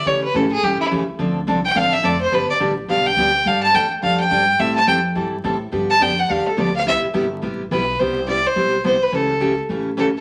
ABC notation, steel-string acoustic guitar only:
X:1
M:4/4
L:1/8
Q:"Swing" 1/4=212
K:C
V:1 name="Steel-string acoustic guitar"
[^C,E,A,^CG] z [C,E,A,CG] z [C,E,A,CG] z [C,E,A,CG] z | [D,F,CDA] z [D,F,CDA] z [D,F,CDA] z [D,F,CDA] z | [D,G,B,DG] z [D,G,B,DG] z [D,G,B,DG] z [D,G,B,DG] z | [G,A,DA] z [G,A,DA] z [G,A,DA] z [G,A,DA] z |
[E,G,CEA] z [E,G,CEA] z [E,G,CEA] z [E,G,CEA] z | [D,F,B,DG] z [D,F,B,DG] z [D,F,B,DG] z [D,F,B,DG] z | [C,G,B,EG] z [C,G,B,EG] z [C,G,B,EG] z [C,G,B,EG] z | [C,G,B,EG] z [C,G,B,EG] z [C,G,B,EG] z [C,G,B,EG] z |
[^C,E,A,^CG] z [C,E,A,CG] z [C,E,A,CG] z [C,E,A,CG] z |]